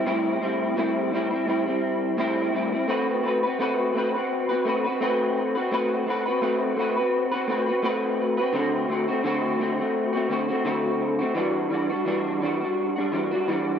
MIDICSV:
0, 0, Header, 1, 2, 480
1, 0, Start_track
1, 0, Tempo, 705882
1, 44, Time_signature, 4, 2, 24, 8
1, 9377, End_track
2, 0, Start_track
2, 0, Title_t, "Clean electric guitar"
2, 0, Program_c, 0, 27
2, 35, Note_on_c, 0, 45, 90
2, 42, Note_on_c, 0, 55, 88
2, 46, Note_on_c, 0, 60, 88
2, 53, Note_on_c, 0, 64, 96
2, 265, Note_off_c, 0, 45, 0
2, 273, Note_on_c, 0, 45, 65
2, 276, Note_off_c, 0, 55, 0
2, 283, Note_off_c, 0, 60, 0
2, 284, Note_on_c, 0, 55, 67
2, 289, Note_off_c, 0, 64, 0
2, 291, Note_on_c, 0, 60, 72
2, 300, Note_on_c, 0, 64, 72
2, 510, Note_off_c, 0, 45, 0
2, 517, Note_off_c, 0, 55, 0
2, 519, Note_on_c, 0, 45, 84
2, 523, Note_off_c, 0, 60, 0
2, 525, Note_on_c, 0, 55, 92
2, 529, Note_off_c, 0, 64, 0
2, 531, Note_on_c, 0, 60, 87
2, 537, Note_on_c, 0, 64, 97
2, 751, Note_off_c, 0, 45, 0
2, 759, Note_on_c, 0, 45, 68
2, 762, Note_off_c, 0, 55, 0
2, 768, Note_off_c, 0, 60, 0
2, 770, Note_on_c, 0, 55, 72
2, 771, Note_off_c, 0, 64, 0
2, 778, Note_on_c, 0, 60, 69
2, 785, Note_on_c, 0, 64, 81
2, 878, Note_off_c, 0, 64, 0
2, 886, Note_on_c, 0, 64, 66
2, 894, Note_off_c, 0, 45, 0
2, 895, Note_off_c, 0, 60, 0
2, 899, Note_off_c, 0, 55, 0
2, 904, Note_on_c, 0, 60, 57
2, 914, Note_on_c, 0, 55, 52
2, 995, Note_on_c, 0, 45, 71
2, 996, Note_off_c, 0, 55, 0
2, 999, Note_off_c, 0, 64, 0
2, 1004, Note_off_c, 0, 60, 0
2, 1004, Note_on_c, 0, 55, 66
2, 1012, Note_on_c, 0, 60, 65
2, 1019, Note_on_c, 0, 64, 74
2, 1119, Note_off_c, 0, 64, 0
2, 1128, Note_on_c, 0, 64, 55
2, 1132, Note_off_c, 0, 45, 0
2, 1133, Note_off_c, 0, 60, 0
2, 1136, Note_off_c, 0, 55, 0
2, 1141, Note_on_c, 0, 60, 53
2, 1153, Note_on_c, 0, 55, 52
2, 1475, Note_off_c, 0, 55, 0
2, 1477, Note_on_c, 0, 45, 87
2, 1480, Note_off_c, 0, 64, 0
2, 1482, Note_off_c, 0, 60, 0
2, 1483, Note_on_c, 0, 55, 93
2, 1490, Note_on_c, 0, 60, 94
2, 1494, Note_on_c, 0, 64, 97
2, 1707, Note_off_c, 0, 45, 0
2, 1715, Note_on_c, 0, 45, 65
2, 1717, Note_off_c, 0, 55, 0
2, 1725, Note_on_c, 0, 55, 77
2, 1727, Note_off_c, 0, 60, 0
2, 1729, Note_off_c, 0, 64, 0
2, 1736, Note_on_c, 0, 60, 72
2, 1741, Note_on_c, 0, 64, 76
2, 1842, Note_off_c, 0, 64, 0
2, 1850, Note_on_c, 0, 64, 59
2, 1852, Note_off_c, 0, 45, 0
2, 1856, Note_off_c, 0, 60, 0
2, 1857, Note_off_c, 0, 55, 0
2, 1864, Note_on_c, 0, 60, 57
2, 1877, Note_on_c, 0, 55, 47
2, 1954, Note_off_c, 0, 55, 0
2, 1955, Note_off_c, 0, 60, 0
2, 1957, Note_on_c, 0, 57, 69
2, 1961, Note_off_c, 0, 64, 0
2, 1963, Note_on_c, 0, 60, 76
2, 1971, Note_on_c, 0, 66, 75
2, 1976, Note_on_c, 0, 71, 80
2, 2190, Note_off_c, 0, 57, 0
2, 2199, Note_on_c, 0, 57, 54
2, 2204, Note_off_c, 0, 60, 0
2, 2208, Note_off_c, 0, 66, 0
2, 2210, Note_off_c, 0, 71, 0
2, 2211, Note_on_c, 0, 60, 54
2, 2219, Note_on_c, 0, 66, 55
2, 2227, Note_on_c, 0, 71, 64
2, 2325, Note_off_c, 0, 71, 0
2, 2333, Note_on_c, 0, 71, 52
2, 2334, Note_off_c, 0, 57, 0
2, 2339, Note_off_c, 0, 66, 0
2, 2340, Note_off_c, 0, 60, 0
2, 2348, Note_on_c, 0, 66, 51
2, 2358, Note_on_c, 0, 60, 44
2, 2439, Note_off_c, 0, 60, 0
2, 2440, Note_on_c, 0, 57, 73
2, 2443, Note_off_c, 0, 71, 0
2, 2445, Note_off_c, 0, 66, 0
2, 2447, Note_on_c, 0, 60, 71
2, 2453, Note_on_c, 0, 66, 79
2, 2460, Note_on_c, 0, 71, 85
2, 2671, Note_off_c, 0, 57, 0
2, 2680, Note_on_c, 0, 57, 58
2, 2685, Note_off_c, 0, 60, 0
2, 2689, Note_off_c, 0, 66, 0
2, 2692, Note_off_c, 0, 71, 0
2, 2693, Note_on_c, 0, 60, 65
2, 2699, Note_on_c, 0, 66, 61
2, 2709, Note_on_c, 0, 71, 71
2, 2808, Note_off_c, 0, 71, 0
2, 2814, Note_off_c, 0, 57, 0
2, 2817, Note_on_c, 0, 71, 49
2, 2821, Note_off_c, 0, 60, 0
2, 2822, Note_off_c, 0, 66, 0
2, 2830, Note_on_c, 0, 66, 55
2, 2841, Note_on_c, 0, 60, 42
2, 3044, Note_off_c, 0, 71, 0
2, 3053, Note_on_c, 0, 71, 48
2, 3059, Note_off_c, 0, 66, 0
2, 3067, Note_on_c, 0, 66, 44
2, 3069, Note_off_c, 0, 60, 0
2, 3078, Note_on_c, 0, 60, 43
2, 3161, Note_on_c, 0, 57, 57
2, 3163, Note_off_c, 0, 71, 0
2, 3164, Note_off_c, 0, 60, 0
2, 3170, Note_off_c, 0, 66, 0
2, 3173, Note_on_c, 0, 60, 59
2, 3181, Note_on_c, 0, 66, 61
2, 3188, Note_on_c, 0, 71, 63
2, 3285, Note_off_c, 0, 71, 0
2, 3293, Note_on_c, 0, 71, 50
2, 3295, Note_off_c, 0, 57, 0
2, 3299, Note_off_c, 0, 66, 0
2, 3301, Note_off_c, 0, 60, 0
2, 3308, Note_on_c, 0, 66, 49
2, 3318, Note_on_c, 0, 60, 43
2, 3403, Note_off_c, 0, 71, 0
2, 3403, Note_on_c, 0, 57, 75
2, 3404, Note_off_c, 0, 60, 0
2, 3410, Note_off_c, 0, 66, 0
2, 3412, Note_on_c, 0, 60, 83
2, 3418, Note_on_c, 0, 66, 80
2, 3424, Note_on_c, 0, 71, 85
2, 3765, Note_off_c, 0, 71, 0
2, 3773, Note_on_c, 0, 71, 49
2, 3776, Note_off_c, 0, 57, 0
2, 3780, Note_off_c, 0, 66, 0
2, 3781, Note_off_c, 0, 60, 0
2, 3788, Note_on_c, 0, 66, 53
2, 3801, Note_on_c, 0, 60, 45
2, 3883, Note_off_c, 0, 71, 0
2, 3885, Note_off_c, 0, 60, 0
2, 3886, Note_on_c, 0, 57, 76
2, 3891, Note_off_c, 0, 66, 0
2, 3893, Note_on_c, 0, 60, 78
2, 3900, Note_on_c, 0, 66, 86
2, 3903, Note_on_c, 0, 71, 80
2, 4114, Note_off_c, 0, 57, 0
2, 4122, Note_on_c, 0, 57, 53
2, 4126, Note_off_c, 0, 60, 0
2, 4133, Note_off_c, 0, 66, 0
2, 4134, Note_off_c, 0, 71, 0
2, 4134, Note_on_c, 0, 60, 53
2, 4141, Note_on_c, 0, 66, 65
2, 4150, Note_on_c, 0, 71, 65
2, 4247, Note_off_c, 0, 71, 0
2, 4255, Note_on_c, 0, 71, 61
2, 4256, Note_off_c, 0, 57, 0
2, 4261, Note_off_c, 0, 66, 0
2, 4262, Note_off_c, 0, 60, 0
2, 4270, Note_on_c, 0, 66, 51
2, 4281, Note_on_c, 0, 60, 48
2, 4360, Note_off_c, 0, 60, 0
2, 4362, Note_on_c, 0, 57, 77
2, 4364, Note_off_c, 0, 71, 0
2, 4365, Note_off_c, 0, 66, 0
2, 4368, Note_on_c, 0, 60, 82
2, 4373, Note_on_c, 0, 66, 81
2, 4380, Note_on_c, 0, 71, 76
2, 4592, Note_off_c, 0, 57, 0
2, 4600, Note_on_c, 0, 57, 63
2, 4604, Note_off_c, 0, 60, 0
2, 4609, Note_off_c, 0, 66, 0
2, 4613, Note_off_c, 0, 71, 0
2, 4613, Note_on_c, 0, 60, 59
2, 4619, Note_on_c, 0, 66, 64
2, 4629, Note_on_c, 0, 71, 66
2, 4728, Note_off_c, 0, 71, 0
2, 4735, Note_off_c, 0, 57, 0
2, 4736, Note_on_c, 0, 71, 54
2, 4741, Note_off_c, 0, 60, 0
2, 4744, Note_off_c, 0, 66, 0
2, 4751, Note_on_c, 0, 66, 45
2, 4762, Note_on_c, 0, 60, 44
2, 4966, Note_off_c, 0, 71, 0
2, 4974, Note_on_c, 0, 71, 48
2, 4980, Note_off_c, 0, 66, 0
2, 4989, Note_on_c, 0, 66, 46
2, 4990, Note_off_c, 0, 60, 0
2, 5001, Note_on_c, 0, 60, 40
2, 5082, Note_on_c, 0, 57, 60
2, 5084, Note_off_c, 0, 71, 0
2, 5086, Note_off_c, 0, 60, 0
2, 5091, Note_off_c, 0, 66, 0
2, 5095, Note_on_c, 0, 60, 65
2, 5101, Note_on_c, 0, 66, 63
2, 5109, Note_on_c, 0, 71, 62
2, 5202, Note_off_c, 0, 71, 0
2, 5210, Note_on_c, 0, 71, 54
2, 5216, Note_off_c, 0, 57, 0
2, 5218, Note_off_c, 0, 66, 0
2, 5222, Note_off_c, 0, 60, 0
2, 5226, Note_on_c, 0, 66, 54
2, 5237, Note_on_c, 0, 60, 43
2, 5320, Note_off_c, 0, 60, 0
2, 5321, Note_on_c, 0, 57, 74
2, 5322, Note_off_c, 0, 71, 0
2, 5324, Note_off_c, 0, 66, 0
2, 5328, Note_on_c, 0, 60, 75
2, 5333, Note_on_c, 0, 66, 74
2, 5341, Note_on_c, 0, 71, 88
2, 5684, Note_off_c, 0, 71, 0
2, 5693, Note_on_c, 0, 71, 57
2, 5695, Note_off_c, 0, 57, 0
2, 5698, Note_off_c, 0, 66, 0
2, 5699, Note_off_c, 0, 60, 0
2, 5706, Note_on_c, 0, 66, 47
2, 5718, Note_on_c, 0, 60, 45
2, 5800, Note_on_c, 0, 50, 82
2, 5803, Note_off_c, 0, 71, 0
2, 5804, Note_off_c, 0, 60, 0
2, 5806, Note_on_c, 0, 57, 75
2, 5810, Note_off_c, 0, 66, 0
2, 5812, Note_on_c, 0, 60, 87
2, 5818, Note_on_c, 0, 66, 82
2, 6032, Note_off_c, 0, 50, 0
2, 6040, Note_on_c, 0, 50, 58
2, 6042, Note_off_c, 0, 57, 0
2, 6049, Note_off_c, 0, 60, 0
2, 6050, Note_on_c, 0, 57, 59
2, 6052, Note_off_c, 0, 66, 0
2, 6059, Note_on_c, 0, 60, 60
2, 6066, Note_on_c, 0, 66, 67
2, 6165, Note_off_c, 0, 66, 0
2, 6173, Note_on_c, 0, 66, 60
2, 6175, Note_off_c, 0, 50, 0
2, 6180, Note_off_c, 0, 57, 0
2, 6180, Note_off_c, 0, 60, 0
2, 6188, Note_on_c, 0, 60, 52
2, 6200, Note_on_c, 0, 57, 49
2, 6279, Note_off_c, 0, 57, 0
2, 6281, Note_on_c, 0, 50, 85
2, 6284, Note_off_c, 0, 66, 0
2, 6287, Note_off_c, 0, 60, 0
2, 6288, Note_on_c, 0, 57, 76
2, 6295, Note_on_c, 0, 60, 85
2, 6300, Note_on_c, 0, 66, 88
2, 6510, Note_off_c, 0, 50, 0
2, 6518, Note_on_c, 0, 50, 67
2, 6520, Note_off_c, 0, 57, 0
2, 6527, Note_off_c, 0, 60, 0
2, 6528, Note_on_c, 0, 57, 67
2, 6534, Note_off_c, 0, 66, 0
2, 6535, Note_on_c, 0, 60, 66
2, 6544, Note_on_c, 0, 66, 62
2, 6641, Note_off_c, 0, 66, 0
2, 6649, Note_on_c, 0, 66, 51
2, 6654, Note_off_c, 0, 50, 0
2, 6654, Note_off_c, 0, 60, 0
2, 6659, Note_off_c, 0, 57, 0
2, 6662, Note_on_c, 0, 60, 50
2, 6676, Note_on_c, 0, 57, 46
2, 6880, Note_off_c, 0, 66, 0
2, 6888, Note_on_c, 0, 66, 50
2, 6894, Note_off_c, 0, 60, 0
2, 6903, Note_on_c, 0, 60, 51
2, 6908, Note_off_c, 0, 57, 0
2, 6915, Note_on_c, 0, 57, 46
2, 6995, Note_on_c, 0, 50, 58
2, 6997, Note_off_c, 0, 57, 0
2, 7001, Note_off_c, 0, 66, 0
2, 7005, Note_on_c, 0, 57, 58
2, 7006, Note_off_c, 0, 60, 0
2, 7014, Note_on_c, 0, 60, 60
2, 7022, Note_on_c, 0, 66, 67
2, 7120, Note_off_c, 0, 66, 0
2, 7128, Note_on_c, 0, 66, 58
2, 7133, Note_off_c, 0, 50, 0
2, 7134, Note_off_c, 0, 60, 0
2, 7138, Note_off_c, 0, 57, 0
2, 7143, Note_on_c, 0, 60, 49
2, 7153, Note_on_c, 0, 57, 43
2, 7239, Note_off_c, 0, 57, 0
2, 7240, Note_on_c, 0, 50, 81
2, 7242, Note_off_c, 0, 66, 0
2, 7244, Note_off_c, 0, 60, 0
2, 7247, Note_on_c, 0, 57, 82
2, 7252, Note_on_c, 0, 60, 76
2, 7258, Note_on_c, 0, 66, 86
2, 7599, Note_off_c, 0, 66, 0
2, 7607, Note_on_c, 0, 66, 54
2, 7615, Note_off_c, 0, 60, 0
2, 7616, Note_off_c, 0, 50, 0
2, 7619, Note_off_c, 0, 57, 0
2, 7623, Note_on_c, 0, 60, 55
2, 7634, Note_on_c, 0, 57, 47
2, 7715, Note_on_c, 0, 52, 73
2, 7721, Note_off_c, 0, 57, 0
2, 7721, Note_off_c, 0, 66, 0
2, 7724, Note_on_c, 0, 55, 78
2, 7725, Note_off_c, 0, 60, 0
2, 7728, Note_on_c, 0, 62, 83
2, 7734, Note_on_c, 0, 66, 79
2, 7947, Note_off_c, 0, 52, 0
2, 7955, Note_on_c, 0, 52, 58
2, 7958, Note_off_c, 0, 55, 0
2, 7965, Note_off_c, 0, 62, 0
2, 7966, Note_on_c, 0, 55, 57
2, 7971, Note_off_c, 0, 66, 0
2, 7973, Note_on_c, 0, 62, 60
2, 7982, Note_on_c, 0, 66, 65
2, 8079, Note_off_c, 0, 66, 0
2, 8088, Note_on_c, 0, 66, 56
2, 8093, Note_off_c, 0, 52, 0
2, 8094, Note_off_c, 0, 62, 0
2, 8099, Note_off_c, 0, 55, 0
2, 8102, Note_on_c, 0, 62, 55
2, 8113, Note_on_c, 0, 55, 43
2, 8194, Note_off_c, 0, 55, 0
2, 8197, Note_on_c, 0, 52, 72
2, 8201, Note_off_c, 0, 66, 0
2, 8202, Note_off_c, 0, 62, 0
2, 8202, Note_on_c, 0, 55, 79
2, 8210, Note_on_c, 0, 62, 75
2, 8214, Note_on_c, 0, 66, 78
2, 8429, Note_off_c, 0, 52, 0
2, 8438, Note_on_c, 0, 52, 63
2, 8440, Note_off_c, 0, 55, 0
2, 8446, Note_off_c, 0, 62, 0
2, 8449, Note_on_c, 0, 55, 60
2, 8451, Note_off_c, 0, 66, 0
2, 8455, Note_on_c, 0, 62, 70
2, 8465, Note_on_c, 0, 66, 75
2, 8563, Note_off_c, 0, 66, 0
2, 8571, Note_on_c, 0, 66, 53
2, 8575, Note_off_c, 0, 52, 0
2, 8579, Note_off_c, 0, 62, 0
2, 8580, Note_off_c, 0, 55, 0
2, 8588, Note_on_c, 0, 62, 46
2, 8599, Note_on_c, 0, 55, 42
2, 8804, Note_off_c, 0, 66, 0
2, 8812, Note_on_c, 0, 66, 49
2, 8819, Note_off_c, 0, 62, 0
2, 8827, Note_on_c, 0, 62, 45
2, 8829, Note_off_c, 0, 55, 0
2, 8838, Note_on_c, 0, 55, 44
2, 8921, Note_on_c, 0, 52, 57
2, 8923, Note_off_c, 0, 55, 0
2, 8924, Note_off_c, 0, 66, 0
2, 8931, Note_on_c, 0, 55, 67
2, 8932, Note_off_c, 0, 62, 0
2, 8940, Note_on_c, 0, 62, 65
2, 8947, Note_on_c, 0, 66, 58
2, 9044, Note_off_c, 0, 66, 0
2, 9052, Note_on_c, 0, 66, 61
2, 9056, Note_off_c, 0, 52, 0
2, 9058, Note_off_c, 0, 62, 0
2, 9061, Note_off_c, 0, 55, 0
2, 9066, Note_on_c, 0, 62, 49
2, 9078, Note_on_c, 0, 55, 46
2, 9163, Note_off_c, 0, 55, 0
2, 9164, Note_off_c, 0, 66, 0
2, 9165, Note_on_c, 0, 52, 76
2, 9169, Note_off_c, 0, 62, 0
2, 9172, Note_on_c, 0, 55, 79
2, 9177, Note_on_c, 0, 62, 77
2, 9184, Note_on_c, 0, 66, 81
2, 9377, Note_off_c, 0, 52, 0
2, 9377, Note_off_c, 0, 55, 0
2, 9377, Note_off_c, 0, 62, 0
2, 9377, Note_off_c, 0, 66, 0
2, 9377, End_track
0, 0, End_of_file